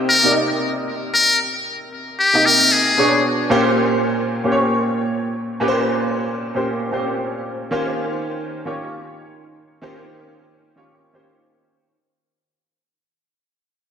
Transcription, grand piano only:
0.00 0.23 C3 loud
0.00 0.24 A#3 loud
0.00 0.24 D#4 loud
0.00 0.24 G4 loud
0.00 2.99 C5 loud
0.23 1.06 C3 medium
0.23 1.07 A#3 medium
0.23 1.07 D#4 medium
0.23 1.07 G4 medium
0.23 0.29 D5 medium
0.31 1.10 D#5 medium
2.33 2.97 C3 medium
2.33 2.97 A#3 medium
2.33 2.98 D#4 medium
2.33 2.98 G4 medium
2.33 2.98 D#5 medium
2.97 3.41 B2 medium
2.97 3.41 B3 medium
2.97 3.41 D4 medium
2.97 3.42 G#4 medium
2.97 3.42 C#5 medium
3.50 4.24 A#2 loud
3.50 4.25 A#3 loud
3.50 4.25 C#4 loud
3.50 4.25 G4 loud
3.50 4.25 C5 loud
4.44 5.27 A#2 medium
4.44 5.28 A#3 medium
4.44 5.28 C#4 medium
4.44 5.28 G4 medium
4.44 4.50 C5 medium
4.52 5.31 C#5 loud
5.60 6.35 A#2 loud
5.60 6.35 A#3 loud
5.60 6.35 C#4 loud
5.60 6.35 G4 loud
5.60 5.68 B4 loud
5.68 6.39 C5 loud
6.55 6.85 A#2 medium
6.55 6.86 A#3 medium
6.55 6.86 C#4 medium
6.55 6.86 G4 medium
6.55 6.86 C5 medium
6.92 7.57 A#2 medium
6.92 7.57 A#3 medium
6.92 7.00 C4 medium
6.92 7.57 G4 medium
6.92 7.58 C5 medium
6.99 7.60 C#4 medium
7.71 8.45 D#3 loud
7.71 8.46 A#3 loud
7.71 8.46 C#4 loud
7.71 8.46 F4 loud
7.71 8.46 G4 loud
7.71 8.46 C5 loud
8.65 9.49 D#3 medium
8.65 9.49 A#3 medium
8.65 9.49 C#4 medium
8.65 9.49 F4 medium
8.65 9.49 G4 medium
8.65 9.50 C#5 medium
9.82 10.56 D#3 loud
9.82 10.56 A#3 loud
9.82 10.56 C#4 loud
9.82 10.57 F4 loud
9.82 10.57 G4 loud
9.82 10.57 C5 loud
10.76 11.06 D#3 medium
10.76 11.07 A#3 medium
10.76 11.07 C#4 medium
10.76 11.07 F4 medium
10.76 11.07 G4 medium
10.76 11.07 C#5 medium
11.13 11.78 D#3 medium
11.13 11.78 A#3 medium
11.13 11.78 C#4 medium
11.13 11.78 F4 medium
11.13 11.79 G4 medium
11.13 11.79 C5 medium

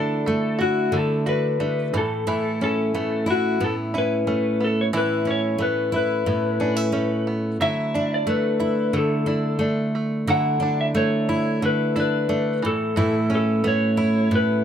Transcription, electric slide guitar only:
0.00 0.63 A4 medium
0.61 0.95 F#4 medium
0.97 1.28 A4 medium
1.29 1.96 B4 medium
1.98 2.58 A4 medium
2.64 3.25 A4 medium
3.30 3.63 F#4 medium
3.64 3.73 A4 medium
3.98 4.65 B4 medium
4.64 4.80 A4 medium
4.81 4.86 C#5 medium
4.97 5.30 B4 medium
5.31 5.63 C#5 medium
5.62 5.93 B4 medium
5.96 7.25 B4 medium
7.62 8.13 E5 medium
8.14 8.30 D5 medium
8.29 8.98 B4 medium
8.97 9.59 A4 medium
10.30 10.80 F#5 medium
10.81 10.86 E5 medium
10.97 11.65 C#5 medium
11.66 11.96 B4 medium
12.00 12.61 B4 medium
12.66 13.34 A4 medium
13.35 13.68 A4 medium
13.68 14.35 C#5 medium
14.35 14.64 B4 medium

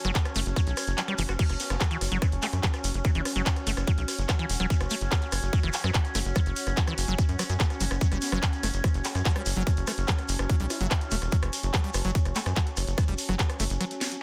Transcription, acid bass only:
0.05 0.11 F#3 loud
0.15 0.19 F#3 medium
0.36 0.40 A3 loud
0.56 0.61 F#3 loud
0.98 1.02 F#3 medium
1.08 1.15 G3 loud
1.18 1.23 E3 loud
1.29 1.33 F#4 medium
1.39 1.43 F#3 loud
1.81 1.87 F#3 medium
1.91 1.97 E3 loud
2.12 2.18 F#3 loud
2.22 2.26 F#3 medium
2.43 2.47 A3 loud
2.63 2.68 F#3 loud
3.05 3.11 F#3 medium
3.15 3.21 E3 loud
3.36 3.42 F#3 loud
3.46 3.50 F#3 medium
3.67 3.71 A3 loud
3.87 3.92 F#3 loud
4.29 4.35 F#3 medium
4.39 4.46 E3 loud
4.60 4.66 F#3 loud
4.91 4.95 A3 loud
5.12 5.16 F#3 loud
5.53 5.59 F#3 medium
5.63 5.70 E3 loud
5.84 5.90 F#3 loud
5.94 5.99 F#3 medium
6.15 6.19 A3 loud
6.36 6.40 F#3 loud
6.77 6.83 F#3 medium
6.87 6.94 E3 loud
7.08 7.15 F#3 loud
7.39 7.43 F#3 loud
7.50 7.54 F#3 medium
7.60 7.66 A3 medium
7.81 7.85 F#3 loud
8.01 8.08 F#3 medium
8.12 8.18 G3 medium
8.32 8.39 F#3 loud
8.43 8.47 F#3 medium
8.63 8.68 A3 loud
8.84 8.88 F#3 loud
9.25 9.32 F#3 medium
9.36 9.42 G3 medium
9.56 9.63 F#3 loud
9.67 9.71 F#3 medium
9.87 9.92 A3 loud
10.08 10.12 F#3 loud
10.49 10.56 F#3 medium
10.60 10.66 G3 medium
10.81 10.87 F#3 loud
10.91 10.95 F#3 medium
11.12 11.16 A3 loud
11.32 11.37 F#3 loud
11.74 11.80 F#3 medium
11.84 11.90 G3 medium
12.05 12.11 F#3 loud
12.15 12.19 F#3 medium
12.36 12.40 A3 loud
12.56 12.61 F#3 loud
12.98 13.04 F#3 medium
13.08 13.14 G3 medium
13.29 13.35 F#3 loud
13.39 13.43 F#3 medium
13.60 13.64 A3 loud
13.81 13.85 F#3 loud

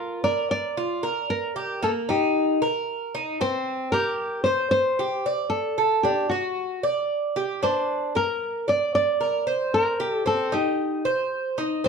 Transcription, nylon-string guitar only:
0.00 0.23 A#4 medium
0.24 0.50 D5 loud
0.51 1.30 D5 loud
1.30 1.83 A#4 loud
1.84 1.91 A4 medium
2.10 2.58 G4 medium
3.41 3.90 C5 loud
3.92 4.42 A#4 loud
4.44 4.70 C5 loud
4.71 5.49 C5 loud
5.50 6.00 A4 medium
6.03 6.29 G4 medium
6.29 6.79 F#4 medium
7.63 8.16 C5 loud
8.16 8.69 A#4 medium
8.69 8.94 D5 loud
8.95 9.74 D5 loud
9.74 10.13 A#4 loud
10.13 10.27 A4 loud
10.27 10.54 A4 medium
10.54 11.02 G4 medium

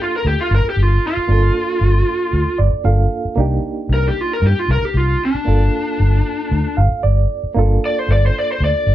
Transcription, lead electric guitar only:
0.02 0.13 F4 medium
0.16 0.26 A#4 medium
0.28 0.39 G4 medium
0.41 0.52 F4 medium
0.55 0.66 A#4 medium
0.70 0.83 G4 medium
0.83 1.05 F4 medium
1.08 2.58 F4 medium
3.94 4.05 A#4 medium
4.08 4.21 G4 medium
4.21 4.32 F4 medium
4.33 4.44 A#4 medium
4.47 4.59 G4 medium
4.59 4.70 F4 medium
4.72 4.85 A#4 medium
4.85 4.97 G4 medium
4.97 5.21 F4 medium
5.25 6.76 D4 medium
7.85 7.99 D5 medium
7.99 8.10 C5 medium
8.12 8.23 D5 medium
8.26 8.38 C5 medium
8.38 8.49 D5 medium
8.52 8.62 C5 medium
8.65 8.95 D5 loud

